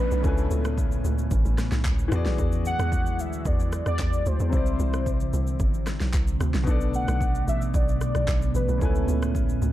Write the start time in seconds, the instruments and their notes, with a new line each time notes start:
Already playing: log drum bass A1, grand piano B2 B3 D4 A4 D5, ambient pad D3 A3 B3 D4, downlifter
0.00 soft synth lead B4
0.11 log drum bass B1, shaker
0.21 log drum bass C#2, ambient pad A2 A3 C#4, grand piano C#3 C#4 E4, kick, shaker
0.26 soft synth lead A4, grand piano B4 G#5
0.38 shaker
0.51 log drum bass C#2, shaker
0.65 cross-stick, shaker
0.78 kick, shaker
0.92 shaker
1.05 log drum bass C#2, shaker
1.18 shaker
1.31 log drum bass G#1, kick, shaker
1.45 log drum bass A1, shaker
1.58 cross-stick, snare, shaker
1.72 log drum bass B1, snare, shaker
1.85 log drum bass C#2, kick, clap, shaker
1.99 shaker
2.08 log drum bass E2, ambient pad D3 F#3 G#3 E4, grand piano E3 B3 F#4, cross-stick, shaker
2.14 grand piano G#4 D5
2.26 log drum bass B1, snare, shaker
2.38 log drum bass E2, kick, shaker
2.52 shaker
2.65 soft synth lead F#5, shaker
2.79 log drum bass E2, cross-stick, shaker
2.92 kick, shaker
3.06 shaker
3.19 log drum bass D2, soft synth lead E5, shaker
3.33 shaker
3.45 log drum bass E2, soft synth lead D5, kick, shaker
3.60 shaker
3.72 cross-stick, shaker
3.86 log drum bass E2, soft synth lead D5, cross-stick, shaker
3.99 log drum bass E2, kick, clap, shaker
4.13 shaker
4.26 log drum bass D2, soft synth lead C5, shaker
4.40 log drum bass E2, shaker
4.49 log drum bass C2, grand piano C3 C4 E4, ambient pad C3 D3 E3 C4, kick, shaker
4.55 grand piano C5 D5
4.66 shaker
4.80 log drum bass C2, shaker
4.94 cross-stick, shaker
5.06 kick, shaker
5.20 shaker
5.33 log drum bass C2, shaker
5.47 shaker
5.60 log drum bass G1, kick, shaker
5.74 log drum bass A1, shaker
5.87 cross-stick, snare, shaker
6.00 log drum bass B1, snare, shaker
6.14 log drum bass C2, kick, clap, shaker
6.28 shaker
6.40 log drum bass D2, cross-stick, shaker
6.54 log drum bass B1, snare, shaker
6.63 log drum bass B1, grand piano B2 B3 D4, ambient pad B2 A3 B3, kick, shaker
6.69 grand piano A4 D5
6.81 shaker
6.94 soft synth lead F#5, shaker
7.08 log drum bass B1, cross-stick, shaker
7.21 kick, shaker
7.35 shaker
7.48 log drum bass A1, soft synth lead E5, shaker
7.62 shaker
7.74 log drum bass B1, soft synth lead D5, kick, shaker
7.88 shaker
8.01 cross-stick, shaker
8.15 log drum bass B1, cross-stick, shaker
8.28 log drum bass B1, kick, clap, shaker
8.42 shaker
8.55 log drum bass A1, soft synth lead B4, shaker
8.69 log drum bass B1, shaker
8.78 log drum bass C#2, grand piano C#3 C#4 E4, ambient pad A3 C#4, kick, shaker
8.82 ambient pad A2, soft synth lead A4, grand piano B4 G#5
8.95 shaker
9.08 log drum bass C#2, shaker
9.22 cross-stick, shaker
9.35 kick, shaker
9.49 shaker
9.62 log drum bass C#2, shaker